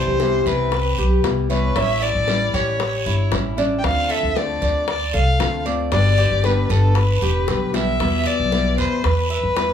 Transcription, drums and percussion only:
0.20 high bongo medium
0.20 short guiro medium
0.46 short guiro medium
0.72 high bongo medium
0.72 long guiro medium
1.24 high bongo medium
1.24 low bongo medium
1.24 short guiro medium
1.50 short guiro medium
1.76 high bongo medium
1.76 long guiro medium
2.02 high bongo soft
2.28 high bongo medium
2.28 short guiro medium
2.54 high bongo soft
2.54 short guiro medium
2.80 high bongo medium
2.80 long guiro medium
3.32 high bongo medium
3.32 low bongo medium
3.32 short guiro medium
3.58 high bongo soft
3.58 short guiro medium
3.84 high bongo medium
3.84 long guiro medium
4.36 high bongo medium
4.36 short guiro medium
4.62 short guiro medium
4.88 high bongo medium
4.88 long guiro medium
5.40 high bongo medium
5.40 low bongo medium
5.40 short guiro medium
5.66 short guiro medium
5.92 high bongo medium
5.92 long guiro medium
6.18 high bongo soft
6.44 high bongo medium
6.44 short guiro medium
6.70 high bongo soft
6.70 short guiro medium
6.95 high bongo medium
6.95 long guiro medium
7.48 high bongo medium
7.48 short guiro medium
7.74 low bongo medium
7.74 short guiro medium
8.00 high bongo medium
8.00 long guiro medium
8.52 high bongo medium
8.52 short guiro medium
8.78 short guiro medium
9.04 high bongo medium
9.04 long guiro medium
9.57 high bongo medium
9.57 low bongo medium
9.57 short guiro medium

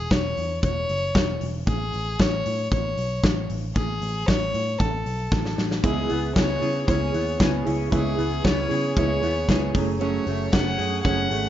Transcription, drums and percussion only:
0.10 kick medium
0.10 snare medium
0.10 closed hi-hat medium
0.37 open hi-hat medium
0.63 kick loud
0.63 closed hi-hat medium
0.89 open hi-hat medium
1.15 kick loud
1.15 snare medium
1.15 closed hi-hat medium
1.41 open hi-hat medium
1.67 kick loud
1.67 closed hi-hat medium
1.93 open hi-hat medium
2.19 kick loud
2.19 snare medium
2.19 closed hi-hat medium
2.46 open hi-hat medium
2.72 kick loud
2.72 closed hi-hat medium
2.98 open hi-hat medium
3.23 kick loud
3.23 snare loud
3.23 closed hi-hat medium
3.50 open hi-hat medium
3.76 kick loud
3.76 closed hi-hat medium
4.02 open hi-hat medium
4.28 kick loud
4.28 snare loud
4.28 closed hi-hat medium
4.54 open hi-hat medium
4.80 kick loud
4.80 closed hi-hat medium
5.06 open hi-hat medium
5.32 kick loud
5.32 snare soft
5.45 snare medium
5.58 snare medium
5.71 snare medium
5.84 kick loud
5.84 closed hi-hat medium
6.10 open hi-hat medium
6.36 kick loud
6.36 snare loud
6.36 closed hi-hat medium
6.62 open hi-hat medium
6.88 kick loud
6.88 closed hi-hat medium
7.14 open hi-hat medium
7.40 kick loud
7.40 snare loud
7.40 closed hi-hat medium
7.67 open hi-hat medium
7.92 kick medium
7.92 closed hi-hat medium
8.19 open hi-hat soft
8.44 kick loud
8.44 snare medium
8.44 closed hi-hat medium
8.71 open hi-hat medium
8.97 kick loud
8.97 closed hi-hat medium
9.23 open hi-hat medium
9.49 kick loud
9.49 snare loud
9.49 closed hi-hat medium
9.75 kick medium
9.75 open hi-hat medium
10.01 closed hi-hat medium
10.27 open hi-hat medium
10.52 kick loud
10.52 snare medium
10.52 closed hi-hat medium
10.79 open hi-hat medium
11.05 kick loud
11.05 closed hi-hat medium
11.31 open hi-hat medium

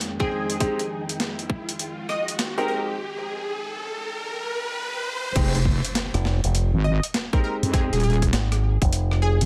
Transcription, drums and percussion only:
0.01 closed hi-hat medium
0.20 kick loud
0.50 closed hi-hat medium
0.60 kick loud
0.60 closed hi-hat medium
0.79 closed hi-hat soft
1.09 closed hi-hat medium
1.20 snare loud
1.20 closed hi-hat medium
1.39 closed hi-hat soft
1.50 kick loud
1.69 closed hi-hat medium
1.79 closed hi-hat medium
2.09 cross-stick soft
2.28 closed hi-hat medium
2.39 snare loud
2.39 closed hi-hat medium
5.36 kick loud
5.36 closed hi-hat medium
5.36 crash loud
5.55 closed hi-hat soft
5.65 kick medium
5.85 closed hi-hat medium
5.95 snare loud
5.95 closed hi-hat medium
6.14 cross-stick soft
6.14 closed hi-hat soft
6.25 snare medium
6.44 closed hi-hat medium
6.55 closed hi-hat medium
7.03 closed hi-hat medium
7.14 snare loud
7.14 closed hi-hat medium
7.33 kick loud
7.63 closed hi-hat medium
7.74 kick loud
7.74 closed hi-hat medium
7.93 closed hi-hat soft
8.00 closed hi-hat soft
8.04 closed hi-hat soft
8.10 closed hi-hat soft
8.13 closed hi-hat soft
8.22 kick medium
8.22 closed hi-hat medium
8.33 snare loud
8.33 closed hi-hat medium
8.52 cross-stick soft
8.52 closed hi-hat soft
8.82 kick loud
8.82 closed hi-hat medium
8.93 closed hi-hat medium
9.11 cross-stick soft
9.41 closed hi-hat medium

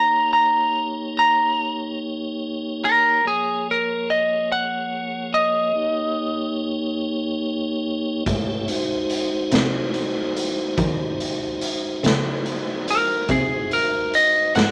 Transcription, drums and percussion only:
8.26 kick medium
8.26 closed hi-hat medium
8.68 closed hi-hat medium
9.10 closed hi-hat medium
9.51 snare medium
9.51 closed hi-hat medium
9.94 closed hi-hat medium
10.37 closed hi-hat medium
10.78 kick medium
10.78 closed hi-hat medium
11.20 closed hi-hat medium
11.61 closed hi-hat medium
12.04 snare medium
12.04 closed hi-hat medium
12.46 closed hi-hat medium
12.88 closed hi-hat medium
13.28 kick medium
13.28 closed hi-hat medium
13.71 closed hi-hat medium
14.13 closed hi-hat medium
14.55 snare loud
14.55 closed hi-hat medium

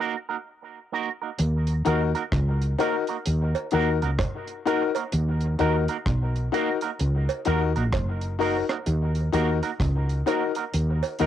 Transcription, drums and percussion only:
1.38 closed hi-hat medium
1.67 closed hi-hat medium
1.85 closed hi-hat medium
2.15 closed hi-hat medium
2.32 kick medium
2.32 cross-stick loud
2.32 closed hi-hat medium
2.62 closed hi-hat medium
2.79 closed hi-hat medium
2.79 cowbell medium
3.07 closed hi-hat medium
3.26 closed hi-hat loud
3.55 closed hi-hat medium
3.55 cowbell medium
3.71 closed hi-hat medium
4.02 closed hi-hat soft
4.19 kick loud
4.19 cross-stick loud
4.19 closed hi-hat medium
4.19 cowbell medium
4.48 closed hi-hat medium
4.67 closed hi-hat medium
4.95 closed hi-hat medium
4.95 cowbell medium
5.12 closed hi-hat loud
5.41 closed hi-hat medium
5.59 closed hi-hat medium
5.88 closed hi-hat medium
6.06 kick loud
6.06 cross-stick medium
6.06 closed hi-hat medium
6.36 closed hi-hat soft
6.54 closed hi-hat medium
6.81 closed hi-hat medium
7.00 closed hi-hat medium
7.29 closed hi-hat medium
7.29 cowbell medium
7.45 closed hi-hat medium
7.76 closed hi-hat medium
7.93 kick loud
7.93 cross-stick loud
7.93 closed hi-hat medium
7.93 cowbell medium
8.21 closed hi-hat medium
8.41 open hi-hat soft
8.69 cross-stick medium
8.69 closed hi-hat medium
8.69 cowbell medium
8.86 closed hi-hat medium
9.15 closed hi-hat medium
9.33 closed hi-hat medium
9.63 closed hi-hat medium
9.80 kick loud
9.80 cross-stick loud
9.80 closed hi-hat medium
10.09 closed hi-hat soft
10.27 closed hi-hat medium
10.27 cowbell medium
10.55 closed hi-hat medium
10.73 closed hi-hat loud
11.03 closed hi-hat medium
11.03 cowbell medium
11.19 closed hi-hat medium

